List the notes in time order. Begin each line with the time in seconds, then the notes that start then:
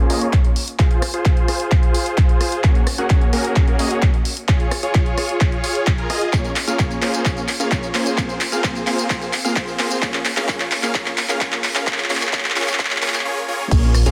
0.10 A#3 C#4 F4 G#4 D#5, open hi-hat
0.21 A#3 C#4 F4 G#4 C#5, closed hi-hat
0.33 kick, clap, closed hi-hat
0.45 closed hi-hat
0.56 open hi-hat
0.68 closed hi-hat
0.79 F4 G#4 C5, kick, clap, closed hi-hat
0.91 closed hi-hat
1.02 cross-stick, open hi-hat
1.14 F4 G#4 C5, closed hi-hat
1.25 F4 G#4 C5, kick, clap, closed hi-hat
1.37 closed hi-hat
1.48 F4 G#4 C5, cross-stick, open hi-hat
1.60 closed hi-hat
1.71 kick, clap, closed hi-hat
1.83 closed hi-hat
1.94 open hi-hat
2.06 closed hi-hat
2.18 kick, clap, closed hi-hat
2.29 closed hi-hat
2.41 cross-stick, open hi-hat
2.52 closed hi-hat
2.64 A#3 C#4 F#4 G#4 C#5, kick, clap, closed hi-hat
2.75 closed hi-hat
2.87 cross-stick, open hi-hat
2.98 A#3 C#4 F#4 G#4 F#5, closed hi-hat
3.10 A#3 C#4 F#4 G#4 C#5, kick, clap, closed hi-hat
3.21 closed hi-hat
3.33 A#3 C#4 F#4 G#4 A#4, open hi-hat
3.44 closed hi-hat
3.56 kick, clap, closed hi-hat
3.68 closed hi-hat
3.79 A#3 C#4 F#4 G#4 D#5, open hi-hat
3.91 A#3 C#4 F#4 G#4 C#5, closed hi-hat
4.02 kick, clap, closed hi-hat
4.14 closed hi-hat
4.25 open hi-hat
4.37 closed hi-hat
4.48 F4 G#4 C#5, kick, clap, closed hi-hat
4.60 closed hi-hat
4.71 cross-stick, open hi-hat
4.83 F4 G#4 C#5, closed hi-hat
4.94 F4 G#4 C#5, kick, clap, closed hi-hat
5.06 closed hi-hat
5.18 F4 G#4 C#5, cross-stick, open hi-hat
5.29 closed hi-hat
5.41 kick, clap, closed hi-hat
5.52 closed hi-hat
5.64 F4 G#4 C#5, open hi-hat
5.75 closed hi-hat
5.87 kick, clap, closed hi-hat
5.98 F4 G#4 A#4, closed hi-hat
6.10 F4 G#4 D#5, cross-stick, open hi-hat
6.21 closed hi-hat
6.33 A#3 C#4 F4 G#4 C#5, kick, clap, closed hi-hat, tambourine
6.44 closed hi-hat, tambourine
6.56 clap, open hi-hat
6.68 A#3 C#4 F4 G#4 F5, closed hi-hat, tambourine
6.79 A#3 C#4 F4 G#4 C#5, kick, clap, closed hi-hat, tambourine
6.91 closed hi-hat, tambourine
7.02 A#3 C#4 F4 G#4 C5, clap, open hi-hat
7.14 closed hi-hat, tambourine
7.25 A#3 C#4 F4 G#4 C#5, kick, clap, closed hi-hat, tambourine
7.37 closed hi-hat, tambourine
7.48 clap, open hi-hat
7.60 A#3 C#4 F4 G#4 F5, closed hi-hat, tambourine
7.71 A#3 C#4 F4 G#4 C#5, kick, clap, closed hi-hat, tambourine
7.83 closed hi-hat, tambourine
7.94 A#3 C#4 F4 G#4 C5, clap, open hi-hat
8.06 closed hi-hat, tambourine
8.18 A#3 C4 F4 G#4 C5, kick, clap, closed hi-hat, tambourine
8.29 closed hi-hat, tambourine
8.41 clap, open hi-hat
8.52 A#3 C4 F4 G#4 F5, closed hi-hat, tambourine
8.64 A#3 C4 F4 G#4 C5, kick, clap, closed hi-hat, tambourine
8.75 closed hi-hat, tambourine
8.87 A#3 C4 F4 G#4 C5, clap, open hi-hat
8.98 closed hi-hat, tambourine
9.10 A#3 C4 F4 G#4 C5, kick, clap, closed hi-hat, tambourine
9.21 closed hi-hat, tambourine
9.33 clap, open hi-hat
9.44 A#3 C4 F4 G#4 F5, closed hi-hat, tambourine
9.56 A#3 C4 F4 G#4 C5, kick, clap, closed hi-hat, tambourine
9.68 closed hi-hat, tambourine
9.79 A#3 C4 F4 G#4 C5, clap, open hi-hat
9.91 closed hi-hat, tambourine
10.02 A#3 C#4 F4 G#4 C#5, kick, clap, closed hi-hat, tambourine
10.14 clap, closed hi-hat, tambourine
10.25 clap, open hi-hat
10.37 A#3 C#4 F4 G#4 F5, clap, closed hi-hat, tambourine
10.48 A#3 C#4 F4 G#4 C#5, kick, clap, closed hi-hat, tambourine
10.60 clap, closed hi-hat, tambourine
10.71 clap, open hi-hat
10.83 A#3 C#4 F4 G#4 F5, clap, closed hi-hat, tambourine
10.94 A#3 C#4 F4 G#4 C#5, kick, clap, closed hi-hat, tambourine
11.06 clap, closed hi-hat, tambourine
11.18 clap, open hi-hat
11.29 A#3 C#4 F4 G#4 F5, clap, closed hi-hat, tambourine
11.41 A#3 C#4 F4 G#4 C#5, kick, clap, closed hi-hat, tambourine
11.52 clap, closed hi-hat, tambourine
11.64 clap, open hi-hat
11.75 A#3 C#4 F4 G#4 F5, clap, closed hi-hat, tambourine
11.87 A#3 C#4 F4 G#4 C#5, kick, clap, closed hi-hat, tambourine
11.93 clap
11.98 clap, closed hi-hat, tambourine
12.04 clap
12.10 A#3 C#4 F4 G#4 C#5, clap, open hi-hat
12.16 clap
12.21 clap, closed hi-hat, tambourine
12.27 clap
12.33 A#3 C#4 F4 G#4 C#5, kick, clap, closed hi-hat, tambourine
12.39 clap
12.45 clap, closed hi-hat, tambourine
12.50 clap
12.56 A#3 C#4 F4 G#4 C#5, clap, open hi-hat
12.62 clap
12.68 clap, closed hi-hat, tambourine
12.73 clap
12.79 A#3 C#4 F4 G#4 C#5, kick, clap, closed hi-hat, tambourine
12.85 clap
12.91 clap, closed hi-hat, tambourine
12.96 clap
13.02 A#3 C#4 F4 G#4 C#5, clap, open hi-hat
13.08 clap
13.14 clap, closed hi-hat, tambourine
13.20 clap
13.25 A#3 C#4 F4 G#4 C#5
13.48 A#3 C#4 F4 G#4 C#5
13.71 A#1 A#3 C#4 F4 G#4 C#5, kick, closed hi-hat, tambourine, crash
13.83 closed hi-hat, tambourine
13.95 cross-stick, open hi-hat, tambourine
14.06 A#1 A#3 C#4 F4 G#4 F5, closed hi-hat, tambourine